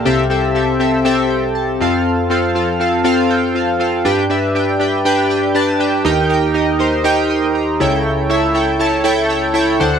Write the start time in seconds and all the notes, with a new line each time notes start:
Already playing: F5 A5
0.05 C2 C3 C4 G4 A4 E5
0.30 C4 G4 A4 E5
0.55 C4 G4 A4 E5
0.80 C4 G4 A4 E5
1.05 C4 G4 A4 E5
1.30 E5 G5
1.55 A5
1.81 F2 C4 F4 A4 F5
2.30 C4 F4 A4 F5
2.55 C4 F4 A4 F5
2.80 C4 F4 A4 F5
3.04 C4 F4 A4 F5
3.29 C4 F4 A4 G5
3.55 C4 F4 A4 F5
3.79 C4 F4 A4 F5
4.05 G2 D4 G4 B4 G5
4.30 D4 G4 B4 E5
4.55 D4 G4 B4 G5
4.80 D4 G4 B4 G5
5.05 D4 G4 B4 G5
5.29 D4 G4 B4 G5
5.55 D4 G4 B4 A5
5.79 D4 G4 B4 G5
6.05 D#2 D#3 D#4 G4 A#4 G5
6.29 D#4 G4 A#4 G5
6.54 D#4 G4 A#4 D#5
6.79 D#4 G4 A#4 C5
7.04 D#4 G4 A#4 G5
7.30 C6 D#6
7.55 G5 A#5
7.80 C#2 C#3 E4 A4 C#5 G5
8.30 E4 A4 C#5 E5
8.54 E4 A4 C#5 G5
8.79 E4 A4 C#5 A5
9.04 E4 A4 C#5 G5
9.29 E4 A4 C#5 G5
9.54 E4 A4 C#5 G5
9.80 D2 D3 D4 A4 C5 F#5